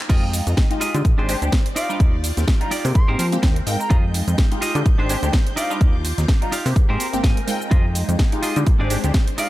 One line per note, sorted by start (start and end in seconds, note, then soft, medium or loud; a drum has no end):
0.09 0.42 F2 loud
0.09 0.65 G#3 loud
0.09 0.65 D#4 medium
0.09 0.23 F4 loud
0.09 0.66 F4 medium
0.09 0.23 G4 medium
0.09 0.23 G#4 loud
0.09 1.04 D#5 medium
0.09 0.23 D#5 loud
0.09 0.66 G5 loud
0.09 kick loud
0.09 closed hi-hat medium
0.09 crash loud
0.09 cabasa soft
0.33 muted clean electric guitar stroke soft
0.33 open hi-hat loud
0.33 cabasa medium
0.47 0.55 F2 medium
0.47 closed hi-hat medium
0.47 cabasa soft
0.57 kick loud
0.57 snare loud
0.57 closed hi-hat medium
0.57 cabasa soft
0.70 0.90 G#3 medium
0.70 0.90 D#4 medium
0.70 0.90 F4 medium
0.70 0.91 G4 loud
0.70 muted clean electric guitar stroke soft
0.70 closed hi-hat medium
0.81 0.94 F4 medium
0.81 0.94 G4 medium
0.81 0.95 G#4 medium
0.81 0.95 D#5 loud
0.81 open hi-hat loud
0.81 cabasa medium
0.94 1.02 D3 loud
0.94 1.04 G#3 medium
0.94 1.04 D#4 medium
0.94 1.04 F4 medium
0.94 1.04 G4 medium
0.94 closed hi-hat medium
0.94 cabasa soft
1.05 1.15 A#1 loud
1.05 1.76 C5 medium
1.05 2.93 D5 medium
1.05 muted clean electric guitar stroke soft
1.05 kick loud
1.05 closed hi-hat medium
1.05 cabasa soft
1.18 1.36 G#1 medium
1.18 1.27 G#3 medium
1.18 1.27 C4 medium
1.18 1.35 D4 loud
1.18 1.27 D4 medium
1.18 1.35 G4 medium
1.18 1.27 G4 loud
1.18 1.36 G#4 medium
1.18 1.36 C5 loud
1.29 1.40 G#3 loud
1.29 1.40 C4 medium
1.29 1.40 D4 medium
1.29 1.40 G4 loud
1.29 open hi-hat loud
1.29 cabasa medium
1.42 1.50 D2 medium
1.42 1.54 G#3 medium
1.42 1.54 C4 medium
1.42 1.54 D4 medium
1.42 1.54 G4 medium
1.42 closed hi-hat medium
1.42 cabasa soft
1.52 muted clean electric guitar stroke medium
1.52 kick loud
1.52 snare loud
1.52 closed hi-hat medium
1.52 cabasa soft
1.66 muted clean electric guitar stroke soft
1.66 closed hi-hat medium
1.76 2.15 D#4 medium
1.76 2.15 F4 medium
1.76 2.94 F4 medium
1.76 2.16 G4 medium
1.76 2.16 D5 medium
1.76 1.90 F5 medium
1.76 9.49 G6 medium
1.76 open hi-hat loud
1.76 cabasa medium
1.89 2.01 G3 medium
1.89 2.02 D4 medium
1.89 2.02 D#4 medium
1.89 2.02 F4 loud
1.89 cabasa soft
2.00 2.32 D#2 loud
2.00 kick loud
2.00 closed hi-hat medium
2.00 cabasa soft
2.23 muted clean electric guitar stroke soft
2.23 open hi-hat loud
2.23 cabasa medium
2.37 2.45 D#2 medium
2.37 snare soft
2.37 closed hi-hat medium
2.37 cabasa soft
2.48 kick loud
2.48 snare loud
2.48 closed hi-hat medium
2.48 cabasa soft
2.60 2.73 G3 medium
2.60 2.73 D4 medium
2.60 2.73 D#4 medium
2.60 2.73 F4 loud
2.60 2.72 A#5 medium
2.60 muted clean electric guitar stroke soft
2.60 closed hi-hat medium
2.71 2.85 D#4 medium
2.71 2.85 F4 medium
2.71 2.85 G4 medium
2.71 2.85 D5 medium
2.71 open hi-hat loud
2.71 cabasa medium
2.84 2.93 C3 loud
2.84 3.05 G#3 medium
2.84 3.05 A#3 medium
2.84 3.05 C4 medium
2.84 3.06 G4 medium
2.84 open hi-hat medium
2.84 cabasa soft
2.95 3.90 C4 medium
2.95 3.90 A#4 medium
2.95 3.09 C6 medium
2.95 muted clean electric guitar stroke soft
2.95 kick loud
2.95 closed hi-hat medium
2.95 cabasa soft
3.08 3.17 G#2 medium
3.08 3.21 G#3 medium
3.08 3.21 A#3 medium
3.08 3.21 C4 medium
3.08 3.26 G4 loud
3.08 3.21 G4 medium
3.08 3.26 G#4 loud
3.08 3.26 A#4 loud
3.08 3.26 C5 loud
3.19 3.38 F3 loud
3.19 open hi-hat loud
3.19 cabasa medium
3.32 3.40 G#3 loud
3.32 3.40 A#3 medium
3.32 3.41 C4 medium
3.32 3.41 G4 loud
3.32 closed hi-hat medium
3.32 cabasa soft
3.42 3.62 D#2 medium
3.42 muted clean electric guitar stroke medium
3.42 kick loud
3.42 snare loud
3.42 closed hi-hat medium
3.42 cabasa soft
3.56 muted clean electric guitar stroke soft
3.56 closed hi-hat medium
3.66 3.77 G#2 medium
3.66 4.48 G#3 loud
3.66 4.48 D#4 medium
3.66 4.49 F4 medium
3.66 4.49 G5 loud
3.66 open hi-hat loud
3.66 cabasa medium
3.80 3.96 A#5 medium
3.80 muted clean electric guitar stroke soft
3.80 cabasa soft
3.90 4.23 F2 loud
3.90 5.56 G#3 medium
3.90 4.85 D#4 medium
3.90 4.04 F4 loud
3.90 4.04 G4 loud
3.90 4.04 G#4 loud
3.90 4.04 D#5 loud
3.90 kick loud
3.90 closed hi-hat medium
3.90 cabasa soft
4.14 muted clean electric guitar stroke soft
4.14 open hi-hat loud
4.14 cabasa medium
4.27 4.36 F2 medium
4.27 closed hi-hat medium
4.27 cabasa soft
4.38 kick loud
4.38 snare loud
4.38 closed hi-hat medium
4.38 cabasa soft
4.51 4.71 G#3 medium
4.51 4.71 D#4 medium
4.51 4.71 F4 medium
4.51 4.72 G4 loud
4.51 muted clean electric guitar stroke soft
4.51 closed hi-hat medium
4.61 4.75 F4 medium
4.61 4.75 G4 medium
4.61 4.75 G#4 medium
4.61 4.76 D#5 loud
4.61 open hi-hat loud
4.61 cabasa medium
4.75 4.83 D3 loud
4.75 4.84 G#3 medium
4.75 4.84 D#4 medium
4.75 4.85 F4 medium
4.75 4.85 G4 loud
4.75 closed hi-hat medium
4.75 cabasa soft
4.85 4.96 A#1 loud
4.85 5.57 D4 medium
4.85 5.57 C5 medium
4.85 muted clean electric guitar stroke soft
4.85 kick loud
4.85 closed hi-hat medium
4.85 cabasa soft
4.98 5.16 G#1 medium
4.98 5.08 G#3 medium
4.98 5.08 C4 medium
4.98 5.16 D4 loud
4.98 5.08 D4 medium
4.98 5.16 G4 loud
4.98 5.08 G4 medium
4.98 5.16 G#4 loud
4.98 5.16 C5 loud
5.09 5.21 G#3 loud
5.09 5.21 C4 medium
5.09 5.21 D4 medium
5.09 5.21 G4 loud
5.09 open hi-hat loud
5.09 cabasa medium
5.23 5.31 D2 medium
5.23 5.35 G#3 medium
5.23 5.35 C4 medium
5.23 5.35 D4 medium
5.23 5.35 G4 medium
5.23 closed hi-hat medium
5.23 cabasa soft
5.33 muted clean electric guitar stroke medium
5.33 kick loud
5.33 snare loud
5.33 closed hi-hat medium
5.33 cabasa soft
5.46 muted clean electric guitar stroke soft
5.46 closed hi-hat medium
5.56 5.96 D#4 loud
5.56 5.96 F4 medium
5.56 6.75 F4 medium
5.56 5.96 G4 medium
5.56 5.97 D5 loud
5.56 5.71 F5 medium
5.56 6.75 D6 medium
5.56 open hi-hat loud
5.56 cabasa medium
5.70 5.82 G3 loud
5.70 5.83 D4 medium
5.70 5.83 D#4 medium
5.70 5.83 F4 loud
5.70 cabasa soft
5.81 6.13 D#2 loud
5.81 kick loud
5.81 closed hi-hat medium
5.81 cabasa soft
6.04 muted clean electric guitar stroke soft
6.04 open hi-hat loud
6.04 cabasa medium
6.18 6.26 D#2 medium
6.18 snare soft
6.18 closed hi-hat medium
6.18 cabasa soft
6.28 kick loud
6.28 snare loud
6.28 closed hi-hat medium
6.28 cabasa soft
6.41 6.54 G3 medium
6.41 6.54 D4 medium
6.41 6.54 D#4 medium
6.41 6.54 F4 loud
6.41 6.53 A#5 medium
6.41 muted clean electric guitar stroke soft
6.41 closed hi-hat medium
6.52 6.65 D#4 medium
6.52 6.66 F4 medium
6.52 6.66 G4 medium
6.52 6.66 F5 medium
6.52 open hi-hat loud
6.52 cabasa medium
6.65 6.74 C3 loud
6.65 6.86 G#3 medium
6.65 6.86 A#3 medium
6.65 6.86 C4 medium
6.65 6.87 G4 medium
6.65 open hi-hat medium
6.65 cabasa soft
6.76 7.71 C4 medium
6.76 7.70 A#4 medium
6.76 muted clean electric guitar stroke soft
6.76 kick loud
6.76 closed hi-hat medium
6.76 cabasa soft
6.89 6.98 G#2 medium
6.89 7.02 G#3 medium
6.89 7.02 A#3 medium
6.89 7.02 C4 medium
6.89 7.06 G4 loud
6.89 7.02 G4 medium
6.89 7.07 G#4 loud
6.89 7.07 A#4 loud
6.89 7.07 C5 loud
7.00 open hi-hat loud
7.00 cabasa medium
7.13 7.22 G#1 soft
7.13 7.21 G#3 loud
7.13 7.21 A#3 medium
7.13 7.21 C4 medium
7.13 7.21 G4 loud
7.13 closed hi-hat soft
7.13 cabasa soft
7.23 7.34 G#1 loud
7.23 7.38 A#3 medium
7.23 7.68 G#5 medium
7.23 muted clean electric guitar stroke medium
7.23 kick loud
7.23 snare loud
7.23 closed hi-hat medium
7.23 cabasa soft
7.37 muted clean electric guitar stroke soft
7.37 closed hi-hat medium
7.47 8.29 G#3 medium
7.47 8.29 D#4 medium
7.47 8.30 F4 medium
7.47 8.30 G5 loud
7.47 open hi-hat loud
7.47 cabasa medium
7.61 muted clean electric guitar stroke soft
7.61 cabasa soft
7.71 8.04 F2 loud
7.71 8.66 G#3 medium
7.71 8.66 D#4 medium
7.71 7.85 F4 loud
7.71 7.85 G4 medium
7.71 7.85 G#4 loud
7.71 7.85 D#5 loud
7.71 kick loud
7.71 closed hi-hat medium
7.71 cabasa soft
7.95 muted clean electric guitar stroke soft
7.95 open hi-hat loud
7.95 cabasa medium
8.09 8.17 F2 medium
8.09 closed hi-hat medium
8.09 cabasa soft
8.19 kick loud
8.19 snare loud
8.19 closed hi-hat medium
8.19 cabasa soft
8.32 8.52 G#3 medium
8.32 8.52 D#4 medium
8.32 8.53 F4 medium
8.32 8.53 G4 loud
8.32 muted clean electric guitar stroke soft
8.32 closed hi-hat medium
8.42 8.56 F4 medium
8.42 8.56 G4 medium
8.42 8.56 G#4 medium
8.42 8.57 D#5 medium
8.42 open hi-hat loud
8.42 cabasa medium
8.56 8.64 D3 loud
8.56 8.65 G#3 medium
8.56 8.66 D#4 medium
8.56 8.66 F4 medium
8.56 8.66 G4 medium
8.56 closed hi-hat medium
8.56 cabasa soft
8.66 8.77 A#1 loud
8.66 9.38 G#3 medium
8.66 9.38 D4 medium
8.66 9.38 C5 medium
8.66 kick loud
8.66 closed hi-hat medium
8.66 cabasa soft
8.79 8.98 G#1 medium
8.79 8.89 G#3 medium
8.79 8.89 C4 medium
8.79 8.97 D4 loud
8.79 8.89 D4 medium
8.79 8.97 G4 medium
8.79 8.89 G4 loud
8.79 8.97 G#4 loud
8.79 8.97 D5 loud
8.90 9.02 G#3 medium
8.90 9.02 C4 medium
8.90 9.02 D4 medium
8.90 9.02 G4 loud
8.90 open hi-hat loud
8.90 cabasa medium
9.04 9.12 D2 medium
9.04 9.16 G#3 medium
9.04 9.16 C4 medium
9.04 9.16 D4 medium
9.04 9.16 G4 medium
9.04 closed hi-hat medium
9.04 cabasa soft
9.14 muted clean electric guitar stroke medium
9.14 kick loud
9.14 snare loud
9.14 closed hi-hat medium
9.14 cabasa soft
9.28 muted clean electric guitar stroke soft
9.28 closed hi-hat medium
9.38 9.49 D#4 loud
9.38 9.49 F4 medium
9.38 9.49 G4 medium
9.38 9.49 D5 medium
9.38 9.49 F5 medium
9.38 open hi-hat loud
9.38 cabasa medium